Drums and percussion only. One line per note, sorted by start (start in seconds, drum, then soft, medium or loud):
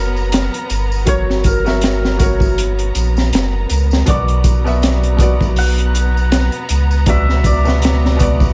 0.16 tambourine medium
0.32 snare loud
0.32 closed hi-hat medium
0.32 tambourine soft
0.54 closed hi-hat soft
0.70 closed hi-hat medium
0.70 tambourine loud
0.92 tambourine medium
1.07 kick loud
1.07 closed hi-hat medium
1.07 tambourine soft
1.30 snare soft
1.44 kick medium
1.44 closed hi-hat medium
1.44 tambourine medium
1.66 snare soft
1.66 tambourine soft
1.81 snare loud
1.81 closed hi-hat medium
1.81 tambourine soft
2.05 snare soft
2.19 kick medium
2.19 closed hi-hat medium
2.19 tambourine medium
2.40 kick medium
2.40 tambourine medium
2.58 closed hi-hat medium
2.58 tambourine soft
2.79 closed hi-hat soft
2.95 closed hi-hat medium
2.95 tambourine medium
3.17 snare soft
3.17 tambourine medium
3.33 snare loud
3.33 closed hi-hat medium
3.33 tambourine soft
3.69 closed hi-hat medium
3.69 tambourine loud
3.91 snare medium
3.91 tambourine medium
4.06 kick loud
4.06 closed hi-hat medium
4.06 tambourine soft
4.28 closed hi-hat soft
4.44 kick medium
4.44 closed hi-hat medium
4.44 tambourine medium
4.67 tambourine medium
4.82 snare loud
4.82 closed hi-hat medium
4.82 tambourine soft
5.03 closed hi-hat soft
5.19 kick medium
5.19 closed hi-hat medium
5.19 tambourine loud
5.41 kick medium
5.41 tambourine soft
5.56 open hi-hat medium
5.56 tambourine soft
5.78 closed hi-hat soft
5.95 closed hi-hat medium
5.95 tambourine medium
6.17 tambourine medium
6.32 snare loud
6.32 closed hi-hat medium
6.32 tambourine soft
6.52 closed hi-hat soft
6.69 closed hi-hat medium
6.69 tambourine medium
6.91 tambourine medium
7.06 kick loud
7.06 closed hi-hat medium
7.06 tambourine soft
7.29 snare soft
7.44 kick medium
7.44 closed hi-hat medium
7.44 tambourine medium
7.65 snare soft
7.65 tambourine soft
7.82 snare loud
7.82 closed hi-hat medium
7.82 tambourine soft
8.05 snare soft
8.19 kick medium
8.19 closed hi-hat medium
8.19 tambourine medium
8.40 kick loud
8.40 tambourine soft